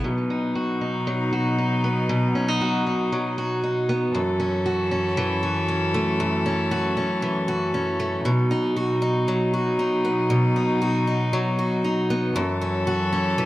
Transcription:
Already playing: steel-string acoustic guitar B3
0.04 steel-string acoustic guitar B2, string quartet B2 F#3 D#4
0.30 steel-string acoustic guitar D#4
0.55 steel-string acoustic guitar F#4
0.81 steel-string acoustic guitar D#4
1.07 steel-string acoustic guitar F#3
1.33 steel-string acoustic guitar F#4
1.58 steel-string acoustic guitar D#4
1.84 steel-string acoustic guitar B3
2.09 steel-string acoustic guitar B2
2.35 steel-string acoustic guitar C#4
2.48 steel-string acoustic guitar D#4
2.61 steel-string acoustic guitar F#4
2.87 steel-string acoustic guitar D#4
3.12 steel-string acoustic guitar F#3
3.38 steel-string acoustic guitar F#4
3.64 steel-string acoustic guitar D#4
3.89 steel-string acoustic guitar B3
4.14 string quartet F#2 E3 A4, steel-string acoustic guitar F#2
4.40 steel-string acoustic guitar C#4
4.66 steel-string acoustic guitar F#4
4.91 steel-string acoustic guitar C#4
5.17 steel-string acoustic guitar E3
5.43 steel-string acoustic guitar F#4
5.68 steel-string acoustic guitar C#4
5.94 steel-string acoustic guitar A3
6.20 steel-string acoustic guitar F#2
6.46 steel-string acoustic guitar C#4
6.71 steel-string acoustic guitar F#4
6.97 steel-string acoustic guitar C#4
7.22 steel-string acoustic guitar E3
7.48 steel-string acoustic guitar F#4
7.74 steel-string acoustic guitar C#4
8.00 steel-string acoustic guitar A3
8.25 string quartet B2 F#3 D#4, steel-string acoustic guitar B2
8.51 steel-string acoustic guitar D#4
8.77 steel-string acoustic guitar F#4
9.02 steel-string acoustic guitar D#4
9.28 steel-string acoustic guitar F#3
9.54 steel-string acoustic guitar F#4
9.79 steel-string acoustic guitar D#4
10.05 steel-string acoustic guitar B3
10.30 steel-string acoustic guitar B2
10.56 steel-string acoustic guitar D#4
10.82 steel-string acoustic guitar F#4
11.07 steel-string acoustic guitar D#4
11.33 steel-string acoustic guitar F#3
11.59 steel-string acoustic guitar F#4
11.84 steel-string acoustic guitar D#4
12.10 steel-string acoustic guitar B3
12.35 string quartet F#2 E3 A4, steel-string acoustic guitar F#2
12.62 steel-string acoustic guitar C#4
12.87 steel-string acoustic guitar F#4
13.13 steel-string acoustic guitar C#4
13.38 steel-string acoustic guitar E3

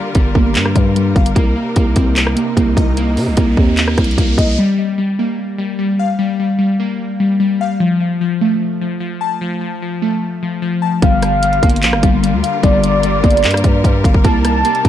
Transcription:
Already playing: string section D3 G3 F4 A#4, synth keys G3 F5
0.15 808-style bass G1, synth keys G3, kick, closed hi-hat
0.35 808-style bass G1, synth keys A#3, kick
0.55 808-style bass G2, clap, closed hi-hat
0.66 cross-stick
0.75 808-style bass G2, synth keys G3, kick, closed hi-hat
0.96 synth keys G3, closed hi-hat
1.16 808-style bass G1, synth keys F5, kick, closed hi-hat
1.26 closed hi-hat
1.35 808-style bass C2, string section C3 D#4, synth keys A#3, kick, closed hi-hat, riser
1.56 synth keys A#3
1.76 808-style bass C2, synth keys A#3, kick, closed hi-hat
1.96 808-style bass C2, synth keys C4, kick, closed hi-hat
2.16 clap, closed hi-hat
2.27 cross-stick
2.36 synth keys A#3, closed hi-hat
2.57 808-style bass C2, synth keys A#3, kick, closed hi-hat
2.77 808-style bass C2, synth keys D#5, kick, closed hi-hat
2.97 synth keys A#3, closed hi-hat
3.17 808-style bass C3, synth keys A#3, open hi-hat
3.27 808-style bass C2
3.37 808-style bass C2, synth keys A#3, kick, closed hi-hat
3.57 808-style bass D#2, synth keys C4, kick
3.77 clap, closed hi-hat
3.88 cross-stick
3.98 808-style bass C2, synth keys A#3, kick, cross-stick, closed hi-hat
4.04 closed hi-hat
4.11 closed hi-hat
4.17 808-style bass C2, synth keys A#3, kick, closed hi-hat
4.38 808-style bass C2, synth keys D#5, kick, closed hi-hat
4.58 synth keys G3
4.78 synth keys G3
4.98 synth keys G3
5.19 synth keys A#3
5.58 synth keys G3
5.79 synth keys G3
5.99 synth keys F5
6.19 synth keys G3
6.40 synth keys G3
6.59 synth keys G3
6.80 synth keys A#3
7.20 synth keys G3
7.40 synth keys G3
7.61 synth keys F5
7.80 synth keys F3
8.00 synth keys F3
8.21 synth keys F3
8.41 synth keys A3
8.81 synth keys F3
9.00 synth keys F3
9.21 synth keys A5
9.41 synth keys F3
9.61 synth keys F3
9.82 synth keys F3
10.02 synth keys A3
10.43 synth keys F3
10.62 synth keys F3
10.82 synth keys A5
11.02 808-style bass G1, string section D3 G3 F4 A#4, synth keys G3, soft synth lead F5, kick, closed hi-hat
11.22 synth keys G3, cross-stick, closed hi-hat
11.43 synth keys G3, closed hi-hat
11.53 closed hi-hat
11.63 808-style bass G1, synth keys A#3, kick, closed hi-hat
11.70 closed hi-hat
11.76 closed hi-hat
11.83 808-style bass A#1, clap, closed hi-hat
11.93 808-style bass G1, cross-stick
12.03 808-style bass G1, synth keys G3, kick, closed hi-hat
12.23 synth keys G3, closed hi-hat
12.33 808-style bass D2
12.43 synth keys F5, closed hi-hat
12.63 808-style bass G1, synth keys G3, soft synth lead D5, kick, closed hi-hat
12.84 synth keys G3, closed hi-hat
13.03 synth keys G3, closed hi-hat
13.24 808-style bass G1, synth keys A#3, kick, closed hi-hat
13.31 closed hi-hat
13.37 closed hi-hat
13.44 808-style bass G2, clap, closed hi-hat
13.51 cross-stick, closed hi-hat
13.57 closed hi-hat
13.64 808-style bass G2, synth keys G3, kick, closed hi-hat
13.84 808-style bass G2, synth keys G3, kick, closed hi-hat
14.04 808-style bass G1, synth keys F5, kick, closed hi-hat
14.14 kick
14.24 808-style bass C2, string section C3 D#4, synth keys A#3, soft synth lead A5, kick, closed hi-hat
14.44 synth keys A#3, cross-stick, closed hi-hat
14.65 synth keys A#3, closed hi-hat
14.75 closed hi-hat
14.85 808-style bass C2, synth keys C4, kick, closed hi-hat

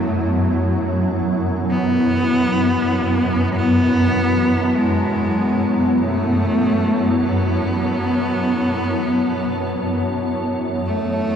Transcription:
Already playing: synth drone F#2 F#3, ambient pad F#3 B3 E4 C#5 A5, cello A3
1.07 ambient pad B3
1.70 cello B3
2.64 ambient pad A5
3.55 cello B3
4.73 cello G#3, ambient pad C#5
5.98 cello A3
7.20 cello B3
10.86 cello A3

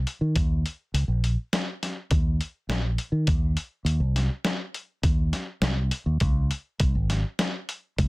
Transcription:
0.07 closed hi-hat
0.21 fingered electric bass D#3
0.36 fingered electric bass D#2, kick, closed hi-hat
0.66 closed hi-hat
0.94 fingered electric bass C#2, closed hi-hat
1.08 fingered electric bass A#1
1.24 closed hi-hat
1.53 snare, closed hi-hat
1.83 snare, closed hi-hat
2.11 fingered electric bass D#2, kick, closed hi-hat
2.41 closed hi-hat
2.69 fingered electric bass A#1, snare, closed hi-hat
2.98 closed hi-hat
3.12 fingered electric bass D#3
3.27 fingered electric bass D#2, kick, closed hi-hat
3.57 closed hi-hat
3.85 fingered electric bass D#2, closed hi-hat
4.00 fingered electric bass C2
4.16 snare, closed hi-hat
4.45 snare, closed hi-hat
4.74 closed hi-hat
5.03 fingered electric bass D#2, kick, closed hi-hat
5.33 snare, closed hi-hat
5.62 fingered electric bass C2, snare, closed hi-hat
5.91 closed hi-hat
6.06 fingered electric bass D#2
6.20 fingered electric bass C#2, kick, closed hi-hat
6.51 closed hi-hat
6.80 fingered electric bass C2, kick, closed hi-hat
6.95 fingered electric bass G#1
7.10 snare, closed hi-hat
7.39 snare, closed hi-hat
7.69 closed hi-hat
7.98 fingered electric bass C#2, kick, closed hi-hat

